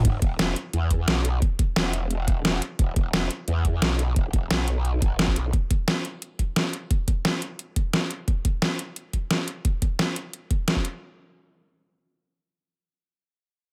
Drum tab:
HH |x-x-x-x-x-x-x-x-|x-x-x-x-x-x-x-x-|x-x-x-x-x-x-x-x-|x-x-x-x-x-x-x-x-|
SD |----o-------o---|----o-------o---|----o-------o---|----o-------o---|
BD |o-o-------o-----|o-o-------o-----|o-o-------o-----|o-o-------o--o--|

HH |x-x-x-x-x-x-x-x-|x-x-x-x-x-x-x-x-|x-x-x-x-x-x-x-x-|x-x-x-x-x-x-x-x-|
SD |----o-------o---|----o-------o---|----o-------o---|----o-------o---|
BD |o-o-------o-----|o-o-------o-----|o-o-------o-----|o-o-------o--o--|

HH |----------------|----------------|
SD |----------------|----------------|
BD |----------------|----------------|